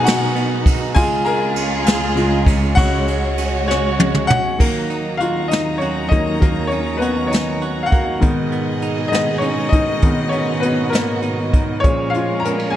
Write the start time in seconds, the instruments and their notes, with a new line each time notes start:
Already playing: string section B2 B3 D#4 F#4 F#5, upright piano B2 F#3 D#4 G#4 A#4 G#5 A#5, clean electric guitar F#3 B3 D#4
0.04 clean electric guitar F#4, upright piano F#4 F#5, snare, ride
0.35 clean electric guitar B3, ride
0.66 clean electric guitar D#4, kick, ride
0.95 string section C#2 C#3 G#3 F4 G#4, upright piano C#3 G#3 F4 G#4 G#5, clean electric guitar G#3 F4, kick, ride
1.25 clean electric guitar G#3, upright piano A#4 A#5, ride
1.56 clean electric guitar C#4, ride
1.85 clean electric guitar F4, upright piano G#4 G#5, snare, ride
2.15 upright piano C#3 G#3 F4, clean electric guitar G#3, ride
2.46 clean electric guitar C#4, kick, ride
2.75 upright piano C#3 G#3 C#4 F#4 F#5, clean electric guitar G#3 F#4, string section F#4 C#5, kick, ride
3.08 clean electric guitar G#3, ride
3.38 clean electric guitar C#4, ride
3.68 upright piano C#4 C#5, clean electric guitar F#4, snare
3.98 clean electric guitar G#3, high tom
4.14 mid tom
4.27 clean electric guitar C#4, upright piano F#4 F#5, mid tom
4.59 string section D#2 D#3 F#3 D#4 A#5, upright piano D#3 F#3 A#3, clean electric guitar A#3, kick, crash
4.90 clean electric guitar D#4, closed hi-hat
5.17 upright piano F4 F5, clean electric guitar F#4, closed hi-hat
5.48 clean electric guitar D#4, upright piano D#4 D#5, closed hi-hat
5.53 snare
5.78 upright piano C#4 C#5, closed hi-hat
5.82 clean electric guitar F#4
6.09 upright piano D#3 F#3 A#3 D#4 D#5, kick, closed hi-hat
6.13 clean electric guitar A#3
6.40 upright piano D#3 F#3 A#4, clean electric guitar A#3, kick, closed hi-hat
6.67 upright piano C#5
6.71 upright piano C#4, clean electric guitar D#4, closed hi-hat
6.97 upright piano B3 B4
7.02 clean electric guitar F#4, closed hi-hat
7.27 upright piano C#4 C#5
7.32 clean electric guitar D#4, snare, closed hi-hat
7.61 clean electric guitar F#4, closed hi-hat
7.83 upright piano F5 F#5
7.91 clean electric guitar A#3, upright piano F#4, kick, closed hi-hat
8.20 upright piano G#2 D#3 B3, string section G#2 B2 D#3 G#4 D#5, clean electric guitar D#3, kick, closed hi-hat
8.52 clean electric guitar B3, closed hi-hat
8.82 clean electric guitar D#4, closed hi-hat
9.08 upright piano G#2 D#3 D#5
9.12 clean electric guitar B3, upright piano B3 D#4, snare, closed hi-hat
9.38 clean electric guitar D#4, upright piano C#5, closed hi-hat
9.43 upright piano C#4
9.69 clean electric guitar D#3, upright piano D#5, kick, closed hi-hat
9.74 upright piano D#4
10.02 upright piano G#2 D#3 B3, clean electric guitar D#3, string section F#4, kick, closed hi-hat
10.29 clean electric guitar B3, upright piano C#5, closed hi-hat
10.34 upright piano C#4
10.60 clean electric guitar D#4, upright piano B4, closed hi-hat
10.64 upright piano B3
10.90 clean electric guitar B3, upright piano A#4, closed hi-hat
10.95 upright piano A#3, snare
11.22 clean electric guitar D#4, closed hi-hat
11.53 clean electric guitar D#3, kick, closed hi-hat
11.80 string section A#2 G#3 C#4 G#4 A#4, upright piano A#2 C#5, clean electric guitar F3, closed hi-hat
11.84 upright piano G#3 C#4, kick
12.10 clean electric guitar G#3, upright piano F5
12.15 upright piano F4, closed hi-hat
12.40 upright piano A#5
12.45 clean electric guitar B3, upright piano A#4, closed hi-hat
12.60 clean electric guitar C#4
12.70 upright piano G#5